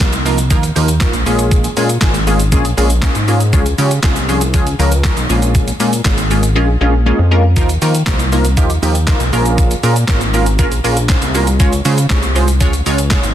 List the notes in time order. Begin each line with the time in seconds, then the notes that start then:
0.00 C2 F3 A#3 D#4 F4 A#4, kick, clap, closed hi-hat, shaker
0.13 closed hi-hat, shaker
0.25 F3 A#3 D#4 F4 A#4, open hi-hat, shaker
0.38 closed hi-hat, shaker
0.50 D#2 F3 A#3 D#4 F4 A#4, kick, closed hi-hat, shaker
0.63 closed hi-hat, shaker
0.76 D#2 F3 A#3 D#4 F4 A#4, open hi-hat, shaker
0.88 closed hi-hat, shaker
1.00 F3 A#3 D#4 F4 A#4, kick, snare, clap, closed hi-hat, shaker
1.13 A#1, closed hi-hat, shaker
1.26 A#1 G#3 A#3 C#4 F4 G#4, open hi-hat, shaker
1.39 closed hi-hat, shaker
1.51 kick, closed hi-hat, shaker
1.64 closed hi-hat, shaker
1.77 A#2 G#3 A#3 C#4 F4 G#4, open hi-hat, shaker
1.89 closed hi-hat, shaker
2.01 G#1 G#3 A#3 C#4 F4 G#4, kick, snare, clap, closed hi-hat, shaker
2.14 closed hi-hat, shaker
2.27 G#3 A#3 C#4 F4 G#4, open hi-hat, shaker
2.40 closed hi-hat, shaker
2.52 A#1 G#3 A#3 C#4 F4 G#4, kick, closed hi-hat, shaker
2.65 closed hi-hat, shaker
2.77 A#1 G#3 A#3 C#4 F4 G#4, open hi-hat, shaker
2.90 closed hi-hat, shaker
3.02 G#3 A#3 C#4 F4 G#4, kick, snare, clap, closed hi-hat, shaker
3.15 G#2, closed hi-hat, shaker
3.28 G#3 A#3 C#4 F4 G#4, open hi-hat, shaker
3.40 closed hi-hat, shaker
3.53 C#2 F3 G#3 C#4 F4 G#4, kick, closed hi-hat, shaker
3.66 closed hi-hat, shaker
3.78 C#3 F3 G#3 C#4 F4 G4, open hi-hat, shaker
3.91 closed hi-hat, shaker
4.03 C2 F3 G#3 C#4 F4 G#4, kick, snare, clap, closed hi-hat, shaker
4.16 closed hi-hat, shaker
4.28 F3 G#3 C#4 F4 G#4, open hi-hat, shaker
4.41 closed hi-hat, shaker
4.54 C#2 F3 G#3 C#4 F4 G#4, kick, closed hi-hat, shaker
4.67 closed hi-hat, shaker
4.79 C#2 F3 G#3 C#4 F4 A#4, open hi-hat, shaker
4.92 closed hi-hat, shaker
5.03 F3 G#3 C#4 F4 A#4, kick, snare, clap, closed hi-hat, shaker
5.17 B1, closed hi-hat, shaker
5.29 A#1 G#3 A#3 C#4 F4 G#4, open hi-hat, shaker
5.42 closed hi-hat, shaker
5.55 kick, closed hi-hat, shaker
5.68 closed hi-hat, shaker
5.80 A#2 G#3 A#3 C#4 F4 G#4, open hi-hat, shaker
5.93 closed hi-hat, shaker
6.04 G#1 G#3 A#3 C#4 F4 G#4, kick, snare, clap, closed hi-hat, shaker
6.18 closed hi-hat, shaker
6.30 G#3 A#3 C#4 F4 G#4, open hi-hat, shaker
6.43 closed hi-hat, shaker
6.55 A#1 G#3 A#3 C#4 F4 G#4
6.81 A#1 G#3 A#3 C#4 F4 G#4
7.06 G#3 A#3 C#4 F4 G#4
7.19 F2
7.31 G#3 A#3 C#4 F4 A#4
7.56 D#2 F3 A#3 D#4 F4 A#4, kick, closed hi-hat, shaker
7.69 closed hi-hat, shaker
7.81 D#3 F3 A#3 D#4 F4 A#4, open hi-hat, shaker
7.95 closed hi-hat, shaker
8.06 C2 F3 A#3 D#4 F4 A#4, kick, snare, clap, closed hi-hat, shaker
8.19 closed hi-hat, shaker
8.32 F3 A#3 D#4 F4 A#4, open hi-hat, shaker
8.45 closed hi-hat, shaker
8.57 D#2 F3 A#3 D#4 F4 G4, kick, closed hi-hat, shaker
8.70 closed hi-hat, shaker
8.82 D#2 F3 A#3 D#4 F4 G4, open hi-hat, shaker
8.95 closed hi-hat, shaker
9.07 F3 A#3 D#4 F4 A#4, kick, snare, clap, closed hi-hat, shaker
9.20 B1, closed hi-hat, shaker
9.33 A#1 A#3 C#4 F4 G#4 A#4, open hi-hat, shaker
9.46 closed hi-hat, shaker
9.58 kick, closed hi-hat, shaker
9.71 closed hi-hat, shaker
9.83 A#2 A#3 C#4 F4 G#4 A#4, open hi-hat, shaker
9.96 closed hi-hat, shaker
10.07 G#1 A#3 C#4 F4 G#4 A#4, kick, snare, clap, closed hi-hat, shaker
10.21 closed hi-hat, shaker
10.34 A#3 C#4 F4 G#4 A#4, open hi-hat, shaker
10.46 closed hi-hat, shaker
10.59 A#1 A#3 C#4 F4 G#4 A#4, kick, closed hi-hat, shaker
10.72 closed hi-hat, shaker
10.84 A#1 A#3 C#4 F4 G#4 A#4, open hi-hat, shaker
10.97 closed hi-hat, shaker
11.08 A#3 C#4 F4 G#4 C5, kick, snare, clap, closed hi-hat, shaker
11.22 C2, closed hi-hat, shaker
11.34 A#3 C#4 F4 G#4 A#4, open hi-hat, shaker
11.47 closed hi-hat, shaker
11.60 C#2 G#3 C#4 F4 G#4 C#5, kick, closed hi-hat, shaker
11.73 closed hi-hat, shaker
11.85 C#3 G#3 C#4 F4 G#4 C5, open hi-hat, shaker
11.98 closed hi-hat, shaker
12.09 C2 G#3 C#4 F4 G#4 C#5, kick, snare, clap, closed hi-hat, shaker
12.23 closed hi-hat, shaker
12.35 G#3 C#4 F4 G#4 C5, open hi-hat, shaker
12.48 closed hi-hat, shaker
12.61 C#2 G#3 C#4 F4 G#4 C#5, kick, closed hi-hat, shaker
12.73 closed hi-hat, shaker
12.86 C#2 G#3 C#4 F4 G#4 C#5, open hi-hat, shaker
12.98 closed hi-hat, shaker
13.10 G#3 C#4 F4 G#4 C#5, kick, snare, clap, closed hi-hat, shaker
13.24 G#1, closed hi-hat, shaker